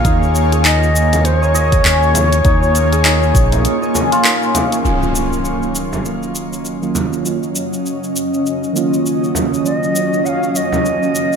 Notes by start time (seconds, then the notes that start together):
Already playing: A#3 C#4 F4 G#4 C#5 D#5 F5
0.05 D#2 D#4, kick, closed hi-hat, shaker
0.23 shaker
0.35 shaker
0.52 G#4, closed hi-hat, shaker
0.64 D#4 D#5, clap, closed hi-hat, shaker
0.83 shaker
0.96 shaker
1.13 closed hi-hat, frame drum, shaker
1.25 C5, closed hi-hat, shaker
1.41 C#5 D#5, shaker
1.54 D#5, shaker
1.72 G#4, kick, closed hi-hat, shaker
1.85 D#2 C#4, clap, closed hi-hat, shaker
2.03 shaker
2.15 closed hi-hat, frame drum, shaker
2.32 closed hi-hat, shaker
2.45 D#2 D#4, kick, closed hi-hat, shaker
2.63 shaker
2.75 closed hi-hat, shaker
2.93 G#4, closed hi-hat, shaker
3.04 D#4, clap, closed hi-hat, shaker
3.23 shaker
3.35 A#1, kick, closed hi-hat, shaker
3.52 closed hi-hat, frame drum, shaker
3.65 closed hi-hat, shaker
3.82 D#5, shaker
3.95 C#4, frame drum, shaker
4.12 F4, closed hi-hat, shaker
4.24 D#4, clap, closed hi-hat, shaker
4.43 shaker
4.55 A#3, closed hi-hat, frame drum, shaker
4.72 C#4, closed hi-hat, shaker
4.82 D#3 F#3 A#3 C#4 D#5, impact, shaker
4.87 F4
5.03 shaker
5.15 shaker
5.33 shaker
5.45 shaker
5.63 shaker
5.75 shaker
5.93 frame drum, shaker
6.05 shaker
6.23 shaker
6.35 shaker
6.53 shaker
6.65 shaker
6.82 D#3 F#3 A#3 C#4 F4, shaker
6.95 frame drum, shaker
7.13 shaker
7.24 D#3 F#3 A#3 C#4 F4, shaker
7.43 shaker
7.56 shaker
7.73 shaker
7.86 shaker
8.04 shaker
8.16 shaker
8.34 shaker
8.46 shaker
8.64 shaker
8.73 D#3 F#3 A#3 C#4 F4, shaker
8.94 shaker
9.06 shaker
9.24 shaker
9.35 frame drum, shaker
9.54 shaker
9.63 D#3 F#3 A#3 C#4 F4 D#5, shaker
9.84 shaker
9.96 shaker
10.13 shaker
10.25 F5 F#5, shaker
10.43 shaker
10.55 D#5, shaker
10.72 frame drum, shaker
10.85 shaker
11.03 shaker
11.15 shaker
11.33 shaker